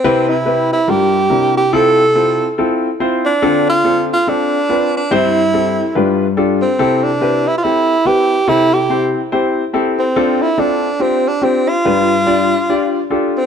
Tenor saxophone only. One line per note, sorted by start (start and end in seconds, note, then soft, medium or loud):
0.00 0.31 C4 medium
0.29 0.72 E4 medium
0.73 0.91 E4 medium
0.90 1.57 G4 medium
1.57 1.75 G4 medium
1.73 2.58 A4 loud
3.26 3.65 D4 medium
3.70 4.08 F4 loud
4.13 4.31 F4 medium
4.29 4.95 D4 medium
4.97 5.16 D4 medium
5.14 5.97 E4 medium
6.62 7.05 C4 medium
7.04 7.49 D4 medium
7.48 7.57 E4 medium
7.58 7.65 F4 medium
7.63 8.08 E4 medium
8.07 8.50 G4 medium
8.49 8.75 E4 loud
8.73 9.15 G4 medium
9.99 10.44 C4 medium
10.42 10.61 E4 medium
10.60 11.03 D4 medium
11.02 11.30 C4 medium
11.28 11.45 D4 medium
11.44 11.70 C4 medium
11.69 13.10 F4 medium
13.37 13.46 C4 medium